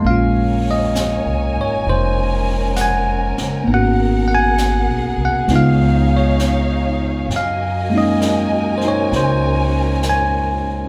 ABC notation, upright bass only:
X:1
M:4/4
L:1/8
Q:"Swing" 1/4=66
K:Bbm
V:1 name="Upright bass" clef=bass
B,,,2- (3B,,, C,, A,,, F,,,3 G,,, | A,,,2- (3A,,, _C,, =C,, D,,4 | G,,4 D,,4 |]